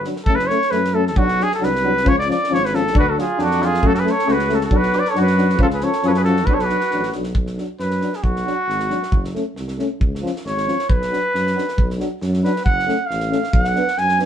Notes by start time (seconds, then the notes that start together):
0.04 F#3 D4, snare
0.16 snare
0.25 F#1 A3 C#4 A4, kick
0.35 B4, snare
0.48 A3 C#4 C#5, snare
0.62 snare
0.70 F#2 A3 C#4 B4, snare
0.84 snare
0.92 A3 C#4 A4
1.07 A4, snare
1.16 B1 F#3 D4 F#4, kick
1.28 snare
1.39 F#3 D4, snare
1.43 G#4
1.52 A4, snare
1.60 C2 F#3 D4, snare
1.64 B4
1.75 snare
1.83 F#3 D4
1.97 snare
2.04 C#2 F3 C#4 C#5, kick
2.18 D5, snare
2.26 F3 C#4
2.31 D5, snare
2.44 snare
2.48 G#1 F3 C#4
2.54 C#5, snare
2.65 B4, snare
2.73 F3 C#4 A4, snare
2.87 snare
2.94 D2 F#3 D4 F#4, kick
2.99 B4
3.07 F#4 A4
3.15 F#3 D4 F4, snare
3.20 G#4
3.37 F2 F#3 D4, snare
3.43 F#4
3.51 snare
3.59 F#3 D4 F4, snare
3.66 G#4
3.74 snare
3.81 F#2 A3 C#4, kick
3.86 F#4 A4
3.93 F#4 A4, snare
3.99 G#4 B4
4.03 A3 C#4 A4, snare
4.11 C#5
4.19 snare
4.25 C#2 A3 C#4 F#4, snare
4.32 B4
4.39 snare
4.48 A3 C#4 F#4, snare
4.55 A4
4.61 F#4, snare
4.66 A4
4.70 B1 F#3 D4 F#4, kick
4.76 B4
4.83 snare
4.92 F#3 D4 B4, snare
4.99 D5
5.05 A4, snare
5.10 C#5
5.15 F#2 F#3 D4 F#4, snare
5.22 B4
5.27 snare
5.37 F#3 D4, snare
5.50 snare
5.58 C#2 F3 C#4 F4, kick
5.63 A4
5.70 G#4 B4, snare
5.80 F3 C#4 A4 C#5, snare
5.93 snare
6.02 F#2 F3 C#4 G#4, snare
6.07 A4 B4 C#5
6.14 G#4 B4, snare
6.24 F3 C#4 F#4 A4, snare
6.36 snare
6.46 B1 F#3 D4 F#4 B4, kick
6.54 A4 C#5
6.59 B4, snare
6.64 F#4
6.69 F#3 D4, snare
6.80 snare
6.91 A1 F#3 D4, snare
7.03 snare
7.12 B1 F#3 D4, snare
7.23 snare
7.35 B1, kick
7.46 snare
7.58 F#3 D4, snare
7.79 F#2 B4, snare
7.91 snare
8.01 F#3 D4, snare
8.13 G#4, snare
8.23 B1 F#4, kick
8.36 snare
8.45 F#3 D4, snare
8.68 G#1, snare
8.80 snare
8.89 F#3 D4, snare
9.03 snare
9.12 F#1, kick
9.24 snare
9.34 A3 C#4, snare
9.56 C2, snare
9.68 snare
9.78 A3 C#4, snare
10.00 C#2, kick
10.15 snare
10.22 F3 C#4
10.26 snare
10.36 snare
10.45 G#1 C#5, snare
10.57 snare
10.66 F3 C#4, snare
10.79 snare
10.90 B1 B4, kick
11.02 snare
11.11 F#3 D4, snare
11.35 F#2, snare
11.47 snare
11.54 F#3 D4
11.58 snare
11.68 snare
11.78 B1, kick
11.90 snare
11.99 F#3 D4, snare
12.21 F#2, snare
12.34 snare
12.44 F#3 D4 B4, snare
12.56 snare
12.65 F#1 F#5, kick
12.79 snare
12.86 A3 C#4, snare
13.06 A1 F5
13.11 snare
13.20 snare
13.29 A3 C#4, snare
13.44 snare
13.52 B1 F5, kick
13.63 F#5, snare
13.75 B3 D4, snare
13.88 snare
13.97 F#2 G#5, snare
14.09 snare
14.18 B3 D4, snare